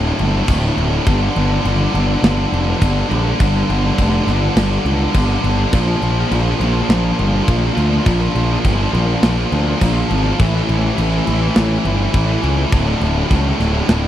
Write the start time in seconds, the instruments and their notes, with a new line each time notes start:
Already playing: picked electric bass D1
0.04 distorted electric guitar D2 A2
0.13 distorted electric guitar D2 A2
0.19 picked electric bass G1, distorted electric guitar D2 A2, crash
0.28 distorted electric guitar D2 A2
0.36 distorted electric guitar D2 A2
0.44 distorted electric guitar D2 A2
0.48 picked electric bass D1, distorted electric guitar D2 A2, kick, snare, crash
0.59 distorted electric guitar D2 A2
0.67 distorted electric guitar D2 A2
0.74 picked electric bass D1, distorted electric guitar D2 A2, crash
0.83 distorted electric guitar D2 A2
0.90 distorted electric guitar D2 A2
0.98 distorted electric guitar D2 A2
1.06 picked electric bass G1, distorted electric guitar G2 D3, kick, crash
1.14 distorted electric guitar G2 D3
1.21 distorted electric guitar G2 D3
1.29 distorted electric guitar G2 D3
1.36 picked electric bass G1, distorted electric guitar G2 D3, crash
1.45 distorted electric guitar G2 D3
1.52 distorted electric guitar G2 D3
1.61 distorted electric guitar G2 D3
1.65 picked electric bass G1, distorted electric guitar G2 D3, crash
1.75 distorted electric guitar G2 D3
1.82 distorted electric guitar G2 D3
1.92 picked electric bass G1, distorted electric guitar G2 D3, crash
1.99 distorted electric guitar G2 D3
2.07 distorted electric guitar G2 D3
2.15 distorted electric guitar G2 D3
2.22 picked electric bass G1, distorted electric guitar G2 D3, snare, crash
2.30 distorted electric guitar G2 D3
2.37 distorted electric guitar G2 D3
2.45 distorted electric guitar G2 D3
2.52 picked electric bass F1, distorted electric guitar G2 D3, crash
2.60 distorted electric guitar G2 D3
2.69 distorted electric guitar G2 D3
2.77 distorted electric guitar G2 D3
2.81 picked electric bass G1, distorted electric guitar G2 D3, kick, crash
2.91 distorted electric guitar G2 D3
3.00 distorted electric guitar G2 D3
3.07 picked electric bass A#1, distorted electric guitar G2 D3, crash
3.15 distorted electric guitar G2 D3
3.23 distorted electric guitar G2 D3
3.30 distorted electric guitar G2 D3
3.39 picked electric bass G1, distorted electric guitar G2 D3, kick, crash
3.47 distorted electric guitar G2 D3
3.56 distorted electric guitar G2 D3
3.63 distorted electric guitar G2 D3
3.69 picked electric bass G1, distorted electric guitar G2 D3, crash
3.78 distorted electric guitar G2 D3
3.86 distorted electric guitar G2 D3
3.93 distorted electric guitar G2 D3
3.98 picked electric bass F1, distorted electric guitar G2 D3, kick, crash
4.10 distorted electric guitar G2 D3
4.17 distorted electric guitar G2 D3
4.24 picked electric bass G1, distorted electric guitar G2 D3, snare, crash
4.32 distorted electric guitar G2 D3
4.40 distorted electric guitar G2 D3
4.48 distorted electric guitar G2 D3
4.56 picked electric bass G1, distorted electric guitar G2 D3, snare, crash
4.63 distorted electric guitar G2 D3
4.71 distorted electric guitar G2 D3
4.79 distorted electric guitar G2 D3
4.85 picked electric bass C#2, distorted electric guitar G2 D3, crash
4.94 distorted electric guitar G2 D3
5.03 distorted electric guitar G2 D3
5.11 distorted electric guitar G2 D3, kick
5.15 picked electric bass G1, distorted electric guitar G2 D3, crash
5.25 distorted electric guitar G2 D3
5.33 distorted electric guitar G2 D3
5.41 picked electric bass G1, distorted electric guitar G2 D3, crash
5.49 distorted electric guitar G2 D3
5.57 distorted electric guitar G2 D3
5.64 distorted electric guitar G2 D3
5.72 picked electric bass A#1, distorted electric guitar A#2 F3, kick, crash
5.80 distorted electric guitar A#2 F3
5.86 distorted electric guitar A#2 F3
5.96 distorted electric guitar A#2 F3
6.02 picked electric bass A#1, distorted electric guitar A#2 F3, crash
6.11 distorted electric guitar A#2 F3
6.20 distorted electric guitar A#2 F3
6.27 distorted electric guitar A#2 F3
6.31 picked electric bass A#1, distorted electric guitar A#2 F3, crash
6.40 distorted electric guitar A#2 F3
6.50 distorted electric guitar A#2 F3
6.57 picked electric bass A#1, distorted electric guitar A#2 F3, crash
6.65 distorted electric guitar A#2 F3
6.73 distorted electric guitar A#2 F3
6.80 distorted electric guitar A#2 F3
6.89 picked electric bass A#1, distorted electric guitar A#2 F3, snare, crash
6.95 distorted electric guitar A#2 F3
7.04 distorted electric guitar A#2 F3
7.12 distorted electric guitar A#2 F3
7.19 picked electric bass G1, distorted electric guitar A#2 F3, crash
7.28 distorted electric guitar A#2 F3
7.35 distorted electric guitar A#2 F3
7.42 distorted electric guitar A#2 F3
7.48 picked electric bass A#1, distorted electric guitar A#2 F3, kick, crash
7.58 distorted electric guitar A#2 F3
7.66 distorted electric guitar A#2 F3
7.73 picked electric bass D2, distorted electric guitar A#2 F3
7.77 crash
7.82 distorted electric guitar A#2 F3
7.90 distorted electric guitar A#2 F3
7.97 distorted electric guitar A#2 F3
8.06 picked electric bass A#1, distorted electric guitar A#2 F3, kick, crash
8.14 distorted electric guitar A#2 F3
8.21 distorted electric guitar A#2 F3
8.29 distorted electric guitar A#2 F3
8.35 picked electric bass A#1, distorted electric guitar A#2 F3, crash
8.44 distorted electric guitar A#2 F3
8.52 distorted electric guitar A#2 F3
8.60 distorted electric guitar A#2 F3
8.65 picked electric bass G1, distorted electric guitar A#2 F3, kick, crash
8.74 distorted electric guitar A#2 F3
8.83 distorted electric guitar A#2 F3
8.91 picked electric bass A#1, distorted electric guitar A#2 F3, crash
9.00 distorted electric guitar A#2 F3
9.06 distorted electric guitar A#2 F3
9.14 distorted electric guitar A#2 F3
9.22 picked electric bass A#1, distorted electric guitar A#2 F3, snare, crash
9.30 distorted electric guitar A#2 F3
9.37 distorted electric guitar A#2 F3
9.45 distorted electric guitar A#2 F3
9.52 picked electric bass D2, distorted electric guitar A#2 F3, crash
9.61 distorted electric guitar A#2 F3
9.69 distorted electric guitar A#2 F3
9.76 distorted electric guitar A#2 F3
9.81 picked electric bass A#1, distorted electric guitar A#2 F3, kick, snare, crash
9.92 distorted electric guitar A#2 F3
10.00 distorted electric guitar A#2 F3
10.08 picked electric bass G#1, distorted electric guitar A#2 F3, crash
10.15 distorted electric guitar A#2 F3
10.24 distorted electric guitar A#2 F3
10.31 distorted electric guitar A#2 F3
10.40 picked electric bass A1, distorted electric guitar A2 E3, kick, crash
10.48 distorted electric guitar A2 E3
10.55 distorted electric guitar A2 E3
10.63 distorted electric guitar A2 E3
10.69 picked electric bass A1, distorted electric guitar A2 E3, crash
10.78 distorted electric guitar A2 E3
10.85 distorted electric guitar A2 E3
10.94 distorted electric guitar A2 E3
10.98 picked electric bass A1, distorted electric guitar A2, crash
11.02 distorted electric guitar E3
11.10 distorted electric guitar A2 E3
11.17 distorted electric guitar A2 E3
11.24 picked electric bass A1, distorted electric guitar A2 E3, crash
11.32 distorted electric guitar A2 E3
11.40 distorted electric guitar A2 E3
11.48 distorted electric guitar A2 E3
11.56 picked electric bass A1, distorted electric guitar A2 E3, snare, crash
11.63 distorted electric guitar A2 E3
11.70 distorted electric guitar A2 E3
11.79 distorted electric guitar A2 E3
11.85 picked electric bass G1, distorted electric guitar A2 E3, crash
11.94 distorted electric guitar A2 E3
12.02 distorted electric guitar A2 E3
12.10 distorted electric guitar A2 E3
12.14 picked electric bass A1, distorted electric guitar A2, kick, crash
12.18 distorted electric guitar E3
12.25 distorted electric guitar A2 E3
12.33 distorted electric guitar A2 E3
12.42 picked electric bass C#2, distorted electric guitar A2 E3, crash
12.48 distorted electric guitar A2 E3
12.56 distorted electric guitar A2 E3
12.62 distorted electric guitar A2 E3
12.71 picked electric bass D1, distorted electric guitar D2 A2, kick, crash
12.79 distorted electric guitar D2 A2
12.87 distorted electric guitar D2 A2
12.95 distorted electric guitar D2 A2
13.01 picked electric bass D1, distorted electric guitar D2 A2, crash
13.11 distorted electric guitar D2 A2
13.18 distorted electric guitar D2 A2
13.26 distorted electric guitar D2 A2
13.30 picked electric bass C#2, distorted electric guitar D2, kick, crash
13.35 distorted electric guitar A2
13.42 distorted electric guitar D2 A2
13.48 distorted electric guitar D2 A2
13.57 picked electric bass D1, distorted electric guitar D2 A2, snare, crash
13.65 distorted electric guitar D2 A2
13.72 distorted electric guitar D2 A2
13.81 distorted electric guitar D2 A2
13.87 picked electric bass D1, distorted electric guitar D2 A2, snare, crash
13.96 distorted electric guitar D2 A2
14.03 distorted electric guitar D2 A2